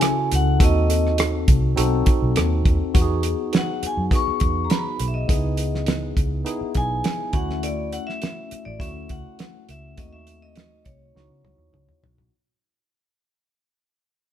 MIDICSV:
0, 0, Header, 1, 6, 480
1, 0, Start_track
1, 0, Key_signature, 4, "minor"
1, 0, Tempo, 586510
1, 493, Time_signature, 4, 2, 24, 8
1, 11726, End_track
2, 0, Start_track
2, 0, Title_t, "Vibraphone"
2, 0, Program_c, 0, 11
2, 0, Note_on_c, 0, 80, 88
2, 230, Note_off_c, 0, 80, 0
2, 286, Note_on_c, 0, 78, 78
2, 494, Note_off_c, 0, 78, 0
2, 523, Note_on_c, 0, 75, 80
2, 955, Note_off_c, 0, 75, 0
2, 2926, Note_on_c, 0, 78, 86
2, 3153, Note_off_c, 0, 78, 0
2, 3164, Note_on_c, 0, 80, 77
2, 3264, Note_off_c, 0, 80, 0
2, 3399, Note_on_c, 0, 85, 101
2, 3801, Note_on_c, 0, 82, 64
2, 3818, Note_off_c, 0, 85, 0
2, 3852, Note_off_c, 0, 82, 0
2, 3852, Note_on_c, 0, 83, 89
2, 4131, Note_off_c, 0, 83, 0
2, 4156, Note_on_c, 0, 76, 53
2, 4207, Note_on_c, 0, 75, 66
2, 4209, Note_off_c, 0, 76, 0
2, 4893, Note_off_c, 0, 75, 0
2, 5542, Note_on_c, 0, 80, 97
2, 6020, Note_on_c, 0, 78, 91
2, 6028, Note_off_c, 0, 80, 0
2, 6249, Note_on_c, 0, 74, 92
2, 6260, Note_off_c, 0, 78, 0
2, 6489, Note_on_c, 0, 78, 91
2, 6494, Note_off_c, 0, 74, 0
2, 6603, Note_on_c, 0, 76, 88
2, 6610, Note_off_c, 0, 78, 0
2, 7052, Note_off_c, 0, 76, 0
2, 7081, Note_on_c, 0, 74, 82
2, 7136, Note_off_c, 0, 74, 0
2, 7200, Note_on_c, 0, 76, 90
2, 7450, Note_off_c, 0, 76, 0
2, 7455, Note_on_c, 0, 78, 93
2, 7898, Note_off_c, 0, 78, 0
2, 7940, Note_on_c, 0, 76, 84
2, 8168, Note_on_c, 0, 75, 86
2, 8180, Note_off_c, 0, 76, 0
2, 8287, Note_on_c, 0, 76, 80
2, 8291, Note_off_c, 0, 75, 0
2, 8531, Note_on_c, 0, 75, 76
2, 8534, Note_off_c, 0, 76, 0
2, 8878, Note_on_c, 0, 73, 67
2, 8900, Note_off_c, 0, 75, 0
2, 9811, Note_off_c, 0, 73, 0
2, 11726, End_track
3, 0, Start_track
3, 0, Title_t, "Tine electric piano"
3, 0, Program_c, 1, 4
3, 0, Control_c, 1, 64, 127
3, 0, Note_on_c, 1, 61, 66
3, 0, Note_on_c, 1, 64, 60
3, 0, Note_on_c, 1, 66, 60
3, 0, Note_on_c, 1, 69, 75
3, 199, Note_off_c, 1, 61, 0
3, 200, Note_off_c, 1, 64, 0
3, 204, Note_off_c, 1, 66, 0
3, 204, Note_off_c, 1, 69, 0
3, 484, Note_on_c, 1, 63, 63
3, 485, Note_on_c, 1, 60, 65
3, 494, Note_on_c, 1, 66, 61
3, 497, Note_on_c, 1, 69, 73
3, 502, Control_c, 1, 64, 0
3, 630, Control_c, 1, 64, 127
3, 1153, Note_off_c, 1, 63, 0
3, 1154, Note_off_c, 1, 60, 0
3, 1158, Note_off_c, 1, 66, 0
3, 1160, Note_off_c, 1, 69, 0
3, 1440, Note_on_c, 1, 60, 77
3, 1445, Note_on_c, 1, 63, 74
3, 1449, Note_on_c, 1, 66, 71
3, 1452, Note_on_c, 1, 69, 83
3, 2110, Note_off_c, 1, 60, 0
3, 2113, Note_off_c, 1, 63, 0
3, 2115, Note_off_c, 1, 66, 0
3, 2116, Note_off_c, 1, 69, 0
3, 2405, Note_on_c, 1, 59, 77
3, 2406, Note_on_c, 1, 63, 65
3, 2408, Note_on_c, 1, 66, 74
3, 2415, Note_on_c, 1, 67, 69
3, 2420, Control_c, 1, 64, 0
3, 2465, Note_off_c, 1, 67, 0
3, 2469, Note_on_c, 1, 68, 91
3, 2540, Control_c, 1, 64, 127
3, 3072, Note_off_c, 1, 59, 0
3, 3073, Note_off_c, 1, 63, 0
3, 3073, Note_off_c, 1, 66, 0
3, 3104, Note_off_c, 1, 68, 0
3, 3364, Note_on_c, 1, 59, 70
3, 3367, Note_on_c, 1, 63, 60
3, 3372, Note_on_c, 1, 66, 54
3, 3378, Note_on_c, 1, 68, 68
3, 4031, Note_off_c, 1, 59, 0
3, 4033, Note_off_c, 1, 63, 0
3, 4035, Note_off_c, 1, 66, 0
3, 4038, Note_off_c, 1, 68, 0
3, 4319, Note_on_c, 1, 59, 66
3, 4327, Note_on_c, 1, 63, 57
3, 4330, Note_on_c, 1, 64, 63
3, 4335, Note_on_c, 1, 68, 76
3, 4336, Control_c, 1, 64, 0
3, 4462, Control_c, 1, 64, 127
3, 4988, Note_off_c, 1, 59, 0
3, 4992, Note_off_c, 1, 63, 0
3, 4994, Note_off_c, 1, 64, 0
3, 4996, Note_off_c, 1, 68, 0
3, 5274, Note_on_c, 1, 59, 81
3, 5278, Note_on_c, 1, 63, 78
3, 5286, Note_on_c, 1, 64, 70
3, 5289, Note_on_c, 1, 68, 88
3, 5946, Note_off_c, 1, 59, 0
3, 5948, Note_off_c, 1, 63, 0
3, 5952, Note_off_c, 1, 64, 0
3, 5953, Note_off_c, 1, 68, 0
3, 5994, Note_on_c, 1, 57, 80
3, 5997, Note_on_c, 1, 61, 71
3, 6004, Note_on_c, 1, 64, 76
3, 6005, Note_on_c, 1, 66, 84
3, 6015, Control_c, 1, 64, 0
3, 6151, Control_c, 1, 64, 127
3, 6768, Note_off_c, 1, 57, 0
3, 6769, Note_off_c, 1, 61, 0
3, 6773, Note_off_c, 1, 64, 0
3, 6773, Note_off_c, 1, 66, 0
3, 7192, Note_on_c, 1, 57, 68
3, 7195, Note_on_c, 1, 61, 58
3, 7197, Note_on_c, 1, 64, 60
3, 7207, Note_on_c, 1, 66, 75
3, 7866, Note_off_c, 1, 57, 0
3, 7867, Note_off_c, 1, 61, 0
3, 7868, Note_off_c, 1, 64, 0
3, 7873, Note_off_c, 1, 66, 0
3, 8153, Note_on_c, 1, 57, 63
3, 8161, Note_on_c, 1, 60, 60
3, 8166, Note_on_c, 1, 63, 60
3, 8170, Note_on_c, 1, 66, 72
3, 8175, Control_c, 1, 64, 0
3, 8322, Control_c, 1, 64, 127
3, 8827, Note_off_c, 1, 57, 0
3, 8831, Note_off_c, 1, 60, 0
3, 8833, Note_off_c, 1, 63, 0
3, 8835, Note_off_c, 1, 66, 0
3, 9121, Note_on_c, 1, 59, 59
3, 9126, Note_on_c, 1, 63, 57
3, 9134, Note_on_c, 1, 64, 56
3, 9136, Note_on_c, 1, 66, 71
3, 9139, Control_c, 1, 64, 0
3, 9276, Control_c, 1, 64, 127
3, 9792, Note_off_c, 1, 59, 0
3, 9794, Note_off_c, 1, 63, 0
3, 9798, Note_off_c, 1, 64, 0
3, 9799, Note_off_c, 1, 66, 0
3, 10098, Control_c, 1, 64, 0
3, 11726, End_track
4, 0, Start_track
4, 0, Title_t, "Fingered electric bass"
4, 0, Program_c, 2, 33
4, 263, Note_on_c, 2, 37, 85
4, 466, Note_off_c, 2, 37, 0
4, 493, Note_on_c, 2, 39, 97
4, 1179, Note_off_c, 2, 39, 0
4, 1215, Note_on_c, 2, 36, 81
4, 1420, Note_off_c, 2, 36, 0
4, 1459, Note_on_c, 2, 35, 76
4, 1662, Note_off_c, 2, 35, 0
4, 1819, Note_on_c, 2, 35, 81
4, 1918, Note_off_c, 2, 35, 0
4, 1944, Note_on_c, 2, 39, 91
4, 2144, Note_off_c, 2, 39, 0
4, 2174, Note_on_c, 2, 39, 78
4, 2275, Note_off_c, 2, 39, 0
4, 2416, Note_on_c, 2, 40, 86
4, 2723, Note_off_c, 2, 40, 0
4, 3251, Note_on_c, 2, 42, 75
4, 3353, Note_off_c, 2, 42, 0
4, 3612, Note_on_c, 2, 40, 79
4, 3817, Note_off_c, 2, 40, 0
4, 4093, Note_on_c, 2, 35, 83
4, 4297, Note_off_c, 2, 35, 0
4, 4330, Note_on_c, 2, 37, 98
4, 5015, Note_off_c, 2, 37, 0
4, 5049, Note_on_c, 2, 37, 78
4, 5254, Note_off_c, 2, 37, 0
4, 5526, Note_on_c, 2, 35, 98
4, 5732, Note_off_c, 2, 35, 0
4, 6006, Note_on_c, 2, 38, 88
4, 6523, Note_off_c, 2, 38, 0
4, 7089, Note_on_c, 2, 33, 80
4, 7191, Note_off_c, 2, 33, 0
4, 7203, Note_on_c, 2, 38, 76
4, 7411, Note_off_c, 2, 38, 0
4, 7450, Note_on_c, 2, 37, 84
4, 7552, Note_off_c, 2, 37, 0
4, 7929, Note_on_c, 2, 37, 85
4, 8135, Note_off_c, 2, 37, 0
4, 8169, Note_on_c, 2, 39, 89
4, 8856, Note_off_c, 2, 39, 0
4, 8889, Note_on_c, 2, 36, 75
4, 9095, Note_off_c, 2, 36, 0
4, 9132, Note_on_c, 2, 37, 92
4, 9234, Note_off_c, 2, 37, 0
4, 9243, Note_on_c, 2, 49, 92
4, 9349, Note_off_c, 2, 49, 0
4, 9358, Note_on_c, 2, 37, 84
4, 9466, Note_off_c, 2, 37, 0
4, 9477, Note_on_c, 2, 39, 87
4, 9585, Note_off_c, 2, 39, 0
4, 9597, Note_on_c, 2, 37, 97
4, 9705, Note_off_c, 2, 37, 0
4, 9845, Note_on_c, 2, 35, 93
4, 10054, Note_off_c, 2, 35, 0
4, 11726, End_track
5, 0, Start_track
5, 0, Title_t, "Muted fingered electric bass strokes"
5, 1694, Note_on_c, 9, 29, 42
5, 1775, Note_off_c, 9, 29, 0
5, 3133, Note_on_c, 9, 29, 44
5, 3215, Note_off_c, 9, 29, 0
5, 3498, Note_on_c, 9, 29, 45
5, 3580, Note_off_c, 9, 29, 0
5, 5409, Note_on_c, 9, 29, 47
5, 5491, Note_off_c, 9, 29, 0
5, 6973, Note_on_c, 9, 29, 42
5, 7055, Note_off_c, 9, 29, 0
5, 11726, End_track
6, 0, Start_track
6, 0, Title_t, "Drums"
6, 9, Note_on_c, 9, 42, 97
6, 20, Note_on_c, 9, 37, 112
6, 91, Note_off_c, 9, 42, 0
6, 102, Note_off_c, 9, 37, 0
6, 258, Note_on_c, 9, 42, 67
6, 340, Note_off_c, 9, 42, 0
6, 492, Note_on_c, 9, 36, 105
6, 494, Note_on_c, 9, 42, 93
6, 574, Note_off_c, 9, 36, 0
6, 576, Note_off_c, 9, 42, 0
6, 735, Note_on_c, 9, 42, 68
6, 817, Note_off_c, 9, 42, 0
6, 873, Note_on_c, 9, 37, 34
6, 955, Note_off_c, 9, 37, 0
6, 967, Note_on_c, 9, 42, 74
6, 982, Note_on_c, 9, 37, 103
6, 1049, Note_off_c, 9, 42, 0
6, 1064, Note_off_c, 9, 37, 0
6, 1210, Note_on_c, 9, 42, 64
6, 1212, Note_on_c, 9, 36, 94
6, 1292, Note_off_c, 9, 42, 0
6, 1294, Note_off_c, 9, 36, 0
6, 1452, Note_on_c, 9, 42, 86
6, 1534, Note_off_c, 9, 42, 0
6, 1687, Note_on_c, 9, 42, 64
6, 1693, Note_on_c, 9, 36, 87
6, 1769, Note_off_c, 9, 42, 0
6, 1774, Note_off_c, 9, 36, 0
6, 1930, Note_on_c, 9, 42, 95
6, 1941, Note_on_c, 9, 37, 103
6, 2012, Note_off_c, 9, 42, 0
6, 2023, Note_off_c, 9, 37, 0
6, 2173, Note_on_c, 9, 36, 96
6, 2174, Note_on_c, 9, 42, 72
6, 2254, Note_off_c, 9, 36, 0
6, 2255, Note_off_c, 9, 42, 0
6, 2412, Note_on_c, 9, 42, 100
6, 2413, Note_on_c, 9, 36, 112
6, 2494, Note_off_c, 9, 42, 0
6, 2495, Note_off_c, 9, 36, 0
6, 2644, Note_on_c, 9, 42, 69
6, 2726, Note_off_c, 9, 42, 0
6, 2887, Note_on_c, 9, 42, 78
6, 2903, Note_on_c, 9, 38, 107
6, 2969, Note_off_c, 9, 42, 0
6, 2985, Note_off_c, 9, 38, 0
6, 3132, Note_on_c, 9, 42, 68
6, 3214, Note_off_c, 9, 42, 0
6, 3365, Note_on_c, 9, 36, 101
6, 3371, Note_on_c, 9, 42, 83
6, 3447, Note_off_c, 9, 36, 0
6, 3453, Note_off_c, 9, 42, 0
6, 3601, Note_on_c, 9, 42, 66
6, 3612, Note_on_c, 9, 36, 89
6, 3683, Note_off_c, 9, 42, 0
6, 3693, Note_off_c, 9, 36, 0
6, 3846, Note_on_c, 9, 42, 90
6, 3857, Note_on_c, 9, 38, 110
6, 3928, Note_off_c, 9, 42, 0
6, 3939, Note_off_c, 9, 38, 0
6, 4088, Note_on_c, 9, 42, 68
6, 4169, Note_off_c, 9, 42, 0
6, 4330, Note_on_c, 9, 36, 115
6, 4331, Note_on_c, 9, 42, 99
6, 4411, Note_off_c, 9, 36, 0
6, 4413, Note_off_c, 9, 42, 0
6, 4562, Note_on_c, 9, 42, 70
6, 4644, Note_off_c, 9, 42, 0
6, 4704, Note_on_c, 9, 38, 34
6, 4786, Note_off_c, 9, 38, 0
6, 4800, Note_on_c, 9, 42, 80
6, 4815, Note_on_c, 9, 38, 101
6, 4881, Note_off_c, 9, 42, 0
6, 4897, Note_off_c, 9, 38, 0
6, 5047, Note_on_c, 9, 36, 95
6, 5051, Note_on_c, 9, 42, 67
6, 5129, Note_off_c, 9, 36, 0
6, 5133, Note_off_c, 9, 42, 0
6, 5287, Note_on_c, 9, 42, 90
6, 5369, Note_off_c, 9, 42, 0
6, 5520, Note_on_c, 9, 42, 61
6, 5527, Note_on_c, 9, 36, 89
6, 5602, Note_off_c, 9, 42, 0
6, 5608, Note_off_c, 9, 36, 0
6, 5763, Note_on_c, 9, 42, 90
6, 5774, Note_on_c, 9, 38, 113
6, 5845, Note_off_c, 9, 42, 0
6, 5856, Note_off_c, 9, 38, 0
6, 5999, Note_on_c, 9, 42, 73
6, 6002, Note_on_c, 9, 36, 105
6, 6080, Note_off_c, 9, 42, 0
6, 6084, Note_off_c, 9, 36, 0
6, 6137, Note_on_c, 9, 38, 35
6, 6219, Note_off_c, 9, 38, 0
6, 6245, Note_on_c, 9, 42, 92
6, 6327, Note_off_c, 9, 42, 0
6, 6486, Note_on_c, 9, 42, 66
6, 6568, Note_off_c, 9, 42, 0
6, 6624, Note_on_c, 9, 38, 34
6, 6705, Note_off_c, 9, 38, 0
6, 6724, Note_on_c, 9, 42, 78
6, 6740, Note_on_c, 9, 38, 98
6, 6806, Note_off_c, 9, 42, 0
6, 6821, Note_off_c, 9, 38, 0
6, 6967, Note_on_c, 9, 42, 65
6, 7048, Note_off_c, 9, 42, 0
6, 7201, Note_on_c, 9, 36, 98
6, 7212, Note_on_c, 9, 42, 90
6, 7282, Note_off_c, 9, 36, 0
6, 7294, Note_off_c, 9, 42, 0
6, 7442, Note_on_c, 9, 42, 63
6, 7448, Note_on_c, 9, 36, 92
6, 7524, Note_off_c, 9, 42, 0
6, 7529, Note_off_c, 9, 36, 0
6, 7684, Note_on_c, 9, 42, 89
6, 7696, Note_on_c, 9, 38, 109
6, 7766, Note_off_c, 9, 42, 0
6, 7777, Note_off_c, 9, 38, 0
6, 7927, Note_on_c, 9, 42, 70
6, 8009, Note_off_c, 9, 42, 0
6, 8164, Note_on_c, 9, 42, 101
6, 8167, Note_on_c, 9, 36, 118
6, 8246, Note_off_c, 9, 42, 0
6, 8249, Note_off_c, 9, 36, 0
6, 8403, Note_on_c, 9, 42, 66
6, 8485, Note_off_c, 9, 42, 0
6, 8638, Note_on_c, 9, 42, 78
6, 8654, Note_on_c, 9, 38, 102
6, 8720, Note_off_c, 9, 42, 0
6, 8735, Note_off_c, 9, 38, 0
6, 8883, Note_on_c, 9, 42, 69
6, 8887, Note_on_c, 9, 36, 99
6, 8965, Note_off_c, 9, 42, 0
6, 8969, Note_off_c, 9, 36, 0
6, 9138, Note_on_c, 9, 38, 56
6, 9220, Note_off_c, 9, 38, 0
6, 9368, Note_on_c, 9, 48, 69
6, 9450, Note_off_c, 9, 48, 0
6, 9606, Note_on_c, 9, 47, 78
6, 9688, Note_off_c, 9, 47, 0
6, 9728, Note_on_c, 9, 45, 67
6, 9810, Note_off_c, 9, 45, 0
6, 9850, Note_on_c, 9, 43, 103
6, 9932, Note_off_c, 9, 43, 0
6, 9971, Note_on_c, 9, 43, 78
6, 10052, Note_off_c, 9, 43, 0
6, 11726, End_track
0, 0, End_of_file